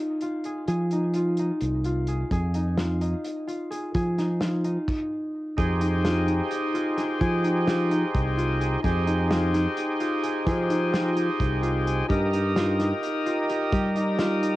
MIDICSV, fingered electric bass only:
0, 0, Header, 1, 2, 480
1, 0, Start_track
1, 0, Key_signature, -4, "minor"
1, 0, Tempo, 466563
1, 696, Time_signature, 7, 3, 24, 8
1, 14979, End_track
2, 0, Start_track
2, 0, Title_t, "Fingered electric bass"
2, 0, Program_c, 0, 33
2, 698, Note_on_c, 0, 53, 77
2, 1541, Note_off_c, 0, 53, 0
2, 1662, Note_on_c, 0, 36, 67
2, 2294, Note_off_c, 0, 36, 0
2, 2381, Note_on_c, 0, 41, 76
2, 3224, Note_off_c, 0, 41, 0
2, 4062, Note_on_c, 0, 53, 78
2, 4905, Note_off_c, 0, 53, 0
2, 5741, Note_on_c, 0, 41, 82
2, 6583, Note_off_c, 0, 41, 0
2, 7419, Note_on_c, 0, 53, 84
2, 8260, Note_off_c, 0, 53, 0
2, 8378, Note_on_c, 0, 36, 73
2, 9009, Note_off_c, 0, 36, 0
2, 9097, Note_on_c, 0, 41, 83
2, 9937, Note_off_c, 0, 41, 0
2, 10766, Note_on_c, 0, 53, 83
2, 11609, Note_off_c, 0, 53, 0
2, 11729, Note_on_c, 0, 36, 73
2, 12360, Note_off_c, 0, 36, 0
2, 12446, Note_on_c, 0, 43, 78
2, 13288, Note_off_c, 0, 43, 0
2, 14124, Note_on_c, 0, 55, 86
2, 14966, Note_off_c, 0, 55, 0
2, 14979, End_track
0, 0, End_of_file